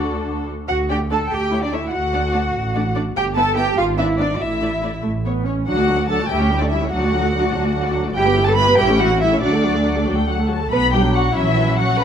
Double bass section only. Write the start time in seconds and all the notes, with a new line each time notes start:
Already playing: D2
0.69 D2
1.32 D2
1.93 D2
2.54 A1
3.16 G1
3.77 G#1
4.41 A1
5.04 A1
5.68 D2
6.30 D2
6.92 D2
7.53 D2
8.14 G1
8.77 A1
9.43 D2
10.08 D2
10.72 B1
11.36 A#1
12.00 B1